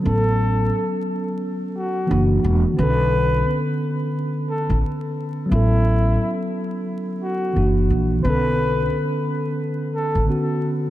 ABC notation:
X:1
M:4/4
L:1/16
Q:"Swing 16ths" 1/4=88
K:Bm
V:1 name="Flugelhorn"
A4- A z4 z F3 z3 | B4- B z4 z A2 z4 | E4- E z4 z F3 z3 | B4- B z4 z A2 z4 |]
V:2 name="Tine electric piano"
[F,B,CA]12 [E,^A,DF]4 | [D,B,CA]16 | [F,B,CA]12 [E,^A,DF]4 | [D,B,CA]12 [D,B,CF]4 |]
V:3 name="Upright bass" clef=bass
A,,,4 z8 F,,,2 E,,, z | B,,,4 z6 z A,,, z4 | A,,,4 z8 F,,,2 ^A,,,2 | B,,,4 z6 z A,,, z4 |]